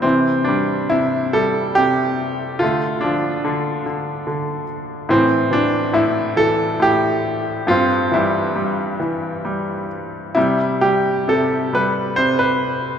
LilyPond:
<<
  \new Staff \with { instrumentName = "Grand piano" } { \time 3/4 \key c \major \tempo 4 = 69 c'8 d'8 e'8 a'8 g'4 | f'8 d'2 r8 | c'8 d'8 e'8 a'8 g'4 | f'8 e'2 r8 |
e'8 g'8 a'8 b'8 c''16 b'8. | }
  \new Staff \with { instrumentName = "Grand piano" } { \clef bass \time 3/4 \key c \major << { e4. r4. | a8 f2 r8 | e4. r4. | c'8 g2 r8 |
g4. r4. | } \\ { c8 g8 c8 g8 c4 | d8 d8 d8 d8 d4 | a,8 e8 a,8 e8 a,4 | g,8 e8 g8 e8 g4 |
c8 g8 c8 g8 c4 | } >> }
>>